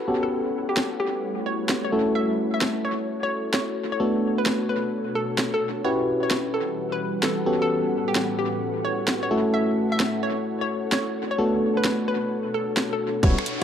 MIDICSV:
0, 0, Header, 1, 7, 480
1, 0, Start_track
1, 0, Tempo, 461538
1, 319, Time_signature, 4, 2, 24, 8
1, 14179, End_track
2, 0, Start_track
2, 0, Title_t, "Synth pluck"
2, 0, Program_c, 0, 84
2, 239, Note_on_c, 0, 69, 90
2, 491, Note_off_c, 0, 69, 0
2, 717, Note_on_c, 0, 67, 90
2, 896, Note_off_c, 0, 67, 0
2, 1037, Note_on_c, 0, 67, 91
2, 1302, Note_off_c, 0, 67, 0
2, 1519, Note_on_c, 0, 73, 92
2, 1728, Note_off_c, 0, 73, 0
2, 1919, Note_on_c, 0, 73, 88
2, 2097, Note_off_c, 0, 73, 0
2, 2239, Note_on_c, 0, 76, 97
2, 2448, Note_off_c, 0, 76, 0
2, 2640, Note_on_c, 0, 76, 90
2, 2817, Note_off_c, 0, 76, 0
2, 2960, Note_on_c, 0, 73, 87
2, 3169, Note_off_c, 0, 73, 0
2, 3361, Note_on_c, 0, 73, 91
2, 3538, Note_off_c, 0, 73, 0
2, 3680, Note_on_c, 0, 73, 90
2, 3889, Note_off_c, 0, 73, 0
2, 4078, Note_on_c, 0, 73, 86
2, 4331, Note_off_c, 0, 73, 0
2, 4559, Note_on_c, 0, 71, 88
2, 4737, Note_off_c, 0, 71, 0
2, 4880, Note_on_c, 0, 71, 88
2, 5144, Note_off_c, 0, 71, 0
2, 5359, Note_on_c, 0, 69, 92
2, 5568, Note_off_c, 0, 69, 0
2, 5759, Note_on_c, 0, 69, 91
2, 5937, Note_off_c, 0, 69, 0
2, 6079, Note_on_c, 0, 73, 94
2, 6288, Note_off_c, 0, 73, 0
2, 6479, Note_on_c, 0, 73, 88
2, 6657, Note_off_c, 0, 73, 0
2, 6800, Note_on_c, 0, 69, 89
2, 7008, Note_off_c, 0, 69, 0
2, 7199, Note_on_c, 0, 71, 93
2, 7377, Note_off_c, 0, 71, 0
2, 7523, Note_on_c, 0, 69, 93
2, 7730, Note_off_c, 0, 69, 0
2, 7922, Note_on_c, 0, 69, 91
2, 8173, Note_off_c, 0, 69, 0
2, 8402, Note_on_c, 0, 67, 92
2, 8579, Note_off_c, 0, 67, 0
2, 8721, Note_on_c, 0, 67, 89
2, 8984, Note_off_c, 0, 67, 0
2, 9199, Note_on_c, 0, 73, 91
2, 9408, Note_off_c, 0, 73, 0
2, 9597, Note_on_c, 0, 73, 89
2, 9776, Note_off_c, 0, 73, 0
2, 9918, Note_on_c, 0, 76, 93
2, 10127, Note_off_c, 0, 76, 0
2, 10316, Note_on_c, 0, 76, 93
2, 10496, Note_off_c, 0, 76, 0
2, 10638, Note_on_c, 0, 73, 91
2, 10848, Note_off_c, 0, 73, 0
2, 11037, Note_on_c, 0, 73, 93
2, 11216, Note_off_c, 0, 73, 0
2, 11361, Note_on_c, 0, 73, 90
2, 11569, Note_off_c, 0, 73, 0
2, 11762, Note_on_c, 0, 73, 91
2, 12012, Note_off_c, 0, 73, 0
2, 12242, Note_on_c, 0, 71, 93
2, 12419, Note_off_c, 0, 71, 0
2, 12563, Note_on_c, 0, 71, 88
2, 12825, Note_off_c, 0, 71, 0
2, 13045, Note_on_c, 0, 69, 91
2, 13251, Note_off_c, 0, 69, 0
2, 13445, Note_on_c, 0, 69, 93
2, 13620, Note_off_c, 0, 69, 0
2, 13762, Note_on_c, 0, 64, 78
2, 13762, Note_on_c, 0, 73, 102
2, 13969, Note_off_c, 0, 73, 0
2, 13970, Note_off_c, 0, 64, 0
2, 14179, End_track
3, 0, Start_track
3, 0, Title_t, "Ambient pad"
3, 0, Program_c, 1, 92
3, 0, Note_on_c, 1, 64, 80
3, 0, Note_on_c, 1, 73, 72
3, 0, Note_on_c, 1, 78, 75
3, 78, Note_on_c, 1, 55, 71
3, 79, Note_on_c, 1, 57, 80
3, 80, Note_on_c, 1, 71, 73
3, 1963, Note_off_c, 1, 78, 0
3, 1980, Note_off_c, 1, 55, 0
3, 1980, Note_off_c, 1, 57, 0
3, 1980, Note_off_c, 1, 71, 0
3, 1998, Note_on_c, 1, 69, 73
3, 1999, Note_on_c, 1, 66, 72
3, 4118, Note_off_c, 1, 64, 0
3, 4138, Note_off_c, 1, 66, 0
3, 4156, Note_on_c, 1, 62, 75
3, 4157, Note_on_c, 1, 47, 82
3, 4157, Note_on_c, 1, 66, 73
3, 6038, Note_off_c, 1, 69, 0
3, 6038, Note_off_c, 1, 73, 0
3, 6058, Note_off_c, 1, 62, 0
3, 6059, Note_off_c, 1, 47, 0
3, 6059, Note_off_c, 1, 66, 0
3, 6077, Note_on_c, 1, 71, 90
3, 6078, Note_on_c, 1, 55, 73
3, 6078, Note_on_c, 1, 78, 76
3, 6079, Note_on_c, 1, 61, 73
3, 7761, Note_on_c, 1, 45, 80
3, 7761, Note_on_c, 1, 64, 76
3, 9642, Note_off_c, 1, 71, 0
3, 9643, Note_off_c, 1, 55, 0
3, 9643, Note_off_c, 1, 61, 0
3, 9661, Note_off_c, 1, 45, 0
3, 9679, Note_on_c, 1, 69, 73
3, 9679, Note_on_c, 1, 73, 91
3, 11797, Note_off_c, 1, 78, 0
3, 11799, Note_off_c, 1, 64, 0
3, 11842, Note_on_c, 1, 47, 80
3, 11842, Note_on_c, 1, 62, 76
3, 11843, Note_on_c, 1, 66, 75
3, 13718, Note_off_c, 1, 69, 0
3, 13718, Note_off_c, 1, 73, 0
3, 13741, Note_off_c, 1, 47, 0
3, 13742, Note_off_c, 1, 62, 0
3, 13742, Note_off_c, 1, 66, 0
3, 14179, End_track
4, 0, Start_track
4, 0, Title_t, "FM electric piano"
4, 0, Program_c, 2, 5
4, 79, Note_on_c, 2, 59, 71
4, 79, Note_on_c, 2, 61, 65
4, 79, Note_on_c, 2, 66, 67
4, 79, Note_on_c, 2, 67, 65
4, 79, Note_on_c, 2, 69, 77
4, 1980, Note_off_c, 2, 59, 0
4, 1980, Note_off_c, 2, 61, 0
4, 1980, Note_off_c, 2, 66, 0
4, 1980, Note_off_c, 2, 67, 0
4, 1980, Note_off_c, 2, 69, 0
4, 1999, Note_on_c, 2, 57, 70
4, 1999, Note_on_c, 2, 61, 65
4, 1999, Note_on_c, 2, 69, 77
4, 2000, Note_on_c, 2, 64, 66
4, 2000, Note_on_c, 2, 66, 64
4, 4140, Note_off_c, 2, 57, 0
4, 4140, Note_off_c, 2, 61, 0
4, 4140, Note_off_c, 2, 64, 0
4, 4140, Note_off_c, 2, 66, 0
4, 4140, Note_off_c, 2, 69, 0
4, 4158, Note_on_c, 2, 57, 70
4, 4158, Note_on_c, 2, 59, 68
4, 4158, Note_on_c, 2, 62, 67
4, 4158, Note_on_c, 2, 66, 66
4, 4158, Note_on_c, 2, 69, 78
4, 6059, Note_off_c, 2, 57, 0
4, 6059, Note_off_c, 2, 59, 0
4, 6059, Note_off_c, 2, 62, 0
4, 6059, Note_off_c, 2, 69, 0
4, 6060, Note_off_c, 2, 66, 0
4, 6079, Note_on_c, 2, 64, 66
4, 6079, Note_on_c, 2, 66, 69
4, 6079, Note_on_c, 2, 67, 66
4, 6080, Note_on_c, 2, 61, 74
4, 6080, Note_on_c, 2, 71, 78
4, 7740, Note_off_c, 2, 61, 0
4, 7740, Note_off_c, 2, 64, 0
4, 7740, Note_off_c, 2, 66, 0
4, 7740, Note_off_c, 2, 67, 0
4, 7740, Note_off_c, 2, 71, 0
4, 7761, Note_on_c, 2, 59, 72
4, 7761, Note_on_c, 2, 61, 68
4, 7761, Note_on_c, 2, 66, 65
4, 7761, Note_on_c, 2, 67, 66
4, 7761, Note_on_c, 2, 69, 78
4, 9661, Note_off_c, 2, 59, 0
4, 9661, Note_off_c, 2, 61, 0
4, 9661, Note_off_c, 2, 66, 0
4, 9661, Note_off_c, 2, 67, 0
4, 9661, Note_off_c, 2, 69, 0
4, 9680, Note_on_c, 2, 57, 75
4, 9680, Note_on_c, 2, 61, 66
4, 9680, Note_on_c, 2, 64, 66
4, 9680, Note_on_c, 2, 66, 68
4, 9680, Note_on_c, 2, 69, 78
4, 11820, Note_off_c, 2, 57, 0
4, 11820, Note_off_c, 2, 61, 0
4, 11820, Note_off_c, 2, 64, 0
4, 11820, Note_off_c, 2, 66, 0
4, 11820, Note_off_c, 2, 69, 0
4, 11839, Note_on_c, 2, 57, 75
4, 11839, Note_on_c, 2, 59, 67
4, 11839, Note_on_c, 2, 62, 69
4, 11839, Note_on_c, 2, 66, 69
4, 11839, Note_on_c, 2, 69, 85
4, 13740, Note_off_c, 2, 57, 0
4, 13740, Note_off_c, 2, 59, 0
4, 13740, Note_off_c, 2, 62, 0
4, 13740, Note_off_c, 2, 66, 0
4, 13740, Note_off_c, 2, 69, 0
4, 13759, Note_on_c, 2, 55, 99
4, 13759, Note_on_c, 2, 59, 92
4, 13760, Note_on_c, 2, 61, 94
4, 13760, Note_on_c, 2, 64, 92
4, 13760, Note_on_c, 2, 66, 110
4, 13880, Note_off_c, 2, 55, 0
4, 13880, Note_off_c, 2, 59, 0
4, 13880, Note_off_c, 2, 61, 0
4, 13880, Note_off_c, 2, 64, 0
4, 13880, Note_off_c, 2, 66, 0
4, 14179, End_track
5, 0, Start_track
5, 0, Title_t, "FM bass"
5, 0, Program_c, 3, 39
5, 13759, Note_on_c, 3, 28, 103
5, 13875, Note_off_c, 3, 28, 0
5, 14179, End_track
6, 0, Start_track
6, 0, Title_t, "Downlifter"
6, 0, Program_c, 4, 103
6, 13760, Note_on_c, 4, 60, 77
6, 14179, Note_off_c, 4, 60, 0
6, 14179, End_track
7, 0, Start_track
7, 0, Title_t, "Drums"
7, 799, Note_on_c, 9, 38, 108
7, 903, Note_off_c, 9, 38, 0
7, 1759, Note_on_c, 9, 38, 107
7, 1863, Note_off_c, 9, 38, 0
7, 2718, Note_on_c, 9, 38, 112
7, 2822, Note_off_c, 9, 38, 0
7, 3678, Note_on_c, 9, 38, 111
7, 3782, Note_off_c, 9, 38, 0
7, 4637, Note_on_c, 9, 38, 113
7, 4741, Note_off_c, 9, 38, 0
7, 5598, Note_on_c, 9, 38, 108
7, 5702, Note_off_c, 9, 38, 0
7, 6559, Note_on_c, 9, 38, 108
7, 6663, Note_off_c, 9, 38, 0
7, 7519, Note_on_c, 9, 38, 108
7, 7623, Note_off_c, 9, 38, 0
7, 8480, Note_on_c, 9, 38, 105
7, 8584, Note_off_c, 9, 38, 0
7, 9440, Note_on_c, 9, 38, 104
7, 9544, Note_off_c, 9, 38, 0
7, 10399, Note_on_c, 9, 38, 109
7, 10503, Note_off_c, 9, 38, 0
7, 11359, Note_on_c, 9, 38, 104
7, 11463, Note_off_c, 9, 38, 0
7, 12319, Note_on_c, 9, 38, 105
7, 12423, Note_off_c, 9, 38, 0
7, 13280, Note_on_c, 9, 38, 107
7, 13384, Note_off_c, 9, 38, 0
7, 13759, Note_on_c, 9, 36, 121
7, 13760, Note_on_c, 9, 42, 66
7, 13863, Note_off_c, 9, 36, 0
7, 13864, Note_off_c, 9, 42, 0
7, 13920, Note_on_c, 9, 26, 71
7, 14000, Note_on_c, 9, 46, 116
7, 14024, Note_off_c, 9, 26, 0
7, 14104, Note_off_c, 9, 46, 0
7, 14179, End_track
0, 0, End_of_file